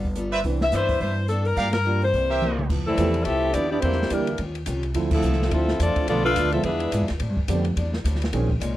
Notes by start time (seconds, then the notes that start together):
Already playing: G1
0.05 kick
0.15 G3 B3 F4 A4, closed hi-hat
0.31 B4 C5 D5 E5, open hi-hat
0.43 C2 C3 E3 B3 C4 D4 B4, kick, open hi-hat
0.61 E5, snare
0.72 G2 C3 E3 B3 D4 B4 C5 D5 E5, snare, closed hi-hat
0.88 kick, open hi-hat
1.00 G2 C3 E3 B3 D4 C5, kick, open hi-hat
1.28 C3 E3 B3 D4 A4, closed hi-hat
1.45 A#4, open hi-hat
1.56 G2 F3 A#3 D4 G4 A#4 D5 F5, kick, open hi-hat
1.73 A#4, snare, ride
1.84 G2 F3 G3 A#3 D4 F4 A#4
2.00 E3 G3 C4 C5, open hi-hat
2.13 C2 C3 G3 A#3 E4, kick, open hi-hat
2.29 G4 A#4 C5 E5
2.42 C3 G3 A#3 E4, high tom
2.59 mid tom
2.69 F2 F3 B3 E4 A4, kick, crash
2.86 C3 E3 G3 A3 C4 E4 A4
2.97 E2 F3 A3 B3 E4 G4 A4, kick, hi-hat pedal, ride
3.14 ride
3.24 C2 F3 A3 B3 C4 E4 G4 A4 E5, kick, ride
3.29 A4
3.52 D#2 F3 B3 D4 E4 G4 D5, kick, hi-hat pedal, ride
3.56 A4
3.69 B3 D4 E4 G4 D5
3.80 E2 D3 E3 G3 A#3 C4 E4 G4 C5, kick, ride
3.84 D4 G4
3.92 snare
4.02 snare
4.09 D2 D3 E3 G3 A#3 D4 E4 G4 A#4, kick, hi-hat pedal, ride
4.27 ride
4.38 D#2 D#3 C#4 F4 G4, kick, ride
4.55 ride
4.66 C2 D#3 C#4 F4 G4, kick, hi-hat pedal, ride
4.83 ride
4.94 D2 D3 F3 A3 C4 E4, kick, ride
5.11 C3 F3 A3 C4 E4 A4, kick, crash
5.22 C2 D3 F3 C4 E4, hi-hat pedal
5.33 snare
5.42 snare
5.51 D2 D3 F3 A3 C4 E4 F4 A4 E5, kick, ride
5.68 snare
5.79 E2 D3 F3 A3 C4 D4 E4 F4 A4 D5, kick, hi-hat pedal, ride
5.96 muted upright bass stroke, kick, ride
6.07 B1 B2 D3 F3 A3 B3 D4 F4 A4 D5, kick, ride
6.24 A3 D4 F4 A4 B4 F5
6.36 D2 B2 F3 A3 D4, kick, hi-hat pedal, ride
6.52 D3 F3 G#3 B3 C4 D4 E4 F4 A4 E5, ride
6.63 E2 E3 G#3 B3 D4 E4 F4 G#4 B4 E5, kick, ride
6.80 ride
6.91 G#2 E3 G#3 D4 F4, kick, hi-hat pedal, ride
7.01 E2
7.08 D2, snare, ride
7.19 A2 G3 C4 D4, kick, ride
7.29 G2
7.37 E2, kick
7.48 F2 A2 D3 G3 A3 B3 C4 D4 G4, kick, hi-hat pedal, ride
7.65 ride
7.76 E2 A2 G3 C4 D4, kick, ride
7.94 snare
8.04 D2 A2 G3 C4 D4, kick, hi-hat pedal, ride
8.16 snare
8.22 snare, ride
8.32 A#1 A#2 D#3 G#3 A#3 C4 C#4 D#4 G#4, kick, ride
8.49 kick
8.60 C2 A#2 G#3 C#4 D#4, kick, hi-hat pedal, ride